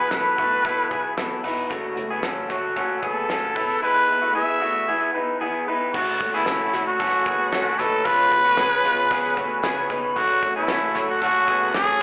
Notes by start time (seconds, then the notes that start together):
Already playing: B3 E4 F#4
0.00 B3 G#4
0.11 B1 B2 F#3 B3 E4 F#4 A4 B4, snare, closed hi-hat
0.38 B1 A3 B3 E4 F#4, kick, closed hi-hat
0.64 B1 F#3 B3 E4 F#4 A4, kick, closed hi-hat
0.90 B1 B3 E4 F#4 G#4, kick, closed hi-hat
1.17 B1 B2 F#3 B3 E4 F#4 A4, snare, closed hi-hat
1.43 E1 B3 D#4 E4 F#4 B4, open hi-hat
1.69 F#1 F#2 C#3 F#3 A3 C#4 F#4, kick, closed hi-hat
1.96 F#1 F#3 A3 C#4 F#4, closed hi-hat
2.10 B3 G#4
2.22 F#1 F#2 C#3 F#3 A3 C#4 F#4 A4, snare, closed hi-hat
2.49 F#1 F#3 A3 C#4 F#4, kick, snare, closed hi-hat
2.75 F#1 F#3 A3 C#4 F#4 A4, kick, closed hi-hat
3.02 F#1 F#3 A3 B3 C#4 F#4 G#4 A4, kick, closed hi-hat
3.29 F#1 F#2 C#3 F#3 A3 C#4 F#4 A4, snare, closed hi-hat
3.54 E1 B3 E4 G#4 B4, kick, open hi-hat
3.81 E3 G#3 B3 E4 G#4 B4
4.08 B3 E4 G#4
4.22 A3 F#4
4.34 E3 B3 E4 G#4 E5
4.60 A3 B3 E4 F#4 G#4
4.87 E3 B3 E4 G#4
5.14 B3 D#4 E4 G#4 B4
5.40 E3 B3 E4 G#4
5.67 B3 D#4 E4 G#4 B4
5.93 F#1 F#2 C#3 F#3 A3 C#4 F#4 A4 C#5 F#5 C#6, kick, crash, tambourine
6.20 F#1 F#3 A3 C#4 F#4, kick, hi-hat pedal, open hi-hat, tambourine
6.34 B3 E4 G#4
6.46 F#1 F#2 C#3 F#3 A3 C#4 F#4 A4, snare, hi-hat pedal, open hi-hat, tambourine
6.73 F#1 F#3 A3 C#4 F#4, snare, hi-hat pedal, open hi-hat, tambourine
6.87 F#4
6.99 F#1 F#3 A3 C#4 F#4 A4, kick, hi-hat pedal, open hi-hat, tambourine
7.26 F#1 F#3 A3 B3 C#4 F#4 G#4, kick, hi-hat pedal, open hi-hat
7.52 F#1 F#2 C#3 F#3 A3 C#4 F#4 A4, snare, hi-hat pedal, open hi-hat, tambourine
7.79 F#1 F#3 A3 C#4 D#4 F#4 A4 B4, hi-hat pedal, open hi-hat, tambourine
8.05 C#2 C#3 F3 G#3 B3 C#4 F4 G#4 B4 F5 B5, kick, hi-hat pedal, open hi-hat, tambourine
8.31 C#2 B3 C#4 G#4, kick, hi-hat pedal, open hi-hat, tambourine
8.44 A3 F#4
8.57 C#2 C#3 F3 B3 C#4 G#4, snare, hi-hat pedal, open hi-hat, tambourine
8.83 C#2 G#3 B3 C#4 F4 G#4, hi-hat pedal, open hi-hat, tambourine
9.10 C#2 F3 B3 C#4 G#4, kick, hi-hat pedal, open hi-hat, tambourine
9.36 C#2 A3 B3 C#4 F#4 G#4, kick, hi-hat pedal, open hi-hat
9.62 C#2 C#3 F3 B3 C#4 G#4, snare, hi-hat pedal, open hi-hat, tambourine
9.89 C#2 B3 C#4 D#4 G#4 B4, kick, hi-hat pedal, open hi-hat, tambourine
10.16 F#1 F#2 C#3 F#3 A3 C#4 F#4 A4 F#5 C#6, kick, hi-hat pedal, open hi-hat
10.42 F#1 F#3 A3 C#4 F#4, kick, hi-hat pedal, open hi-hat, tambourine
10.56 B3 E4 G#4
10.68 F#1 F#2 C#3 F#3 A3 C#4 F#4 A4, snare, hi-hat pedal, open hi-hat, tambourine
10.95 F#1 F#3 A3 C#4 F#4, snare, hi-hat pedal, open hi-hat, tambourine
11.09 F#4
11.21 F#1 F#3 A3 C#4 F#4 A4, kick, hi-hat pedal, open hi-hat, tambourine
11.47 F#1 F#3 A3 B3 C#4 F#4 G#4, kick, hi-hat pedal, open hi-hat, tambourine
11.74 F#1 F#2 C#3 F#3 A3 C#4 F#4 G#4 A4, snare, hi-hat pedal, open hi-hat, tambourine